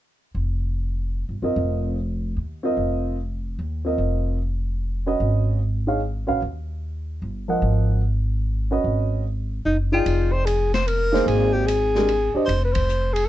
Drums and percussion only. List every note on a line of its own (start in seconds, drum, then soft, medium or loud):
10.06 ride soft
10.47 hi-hat pedal soft
10.47 ride medium
10.74 snare soft
10.74 ride soft
10.88 ride soft
11.14 snare soft
11.28 ride soft
11.68 hi-hat pedal soft
11.68 ride medium
11.95 snare soft
12.09 ride soft
12.49 ride soft
12.75 kick medium
12.75 ride medium
12.89 hi-hat pedal medium
13.16 ride medium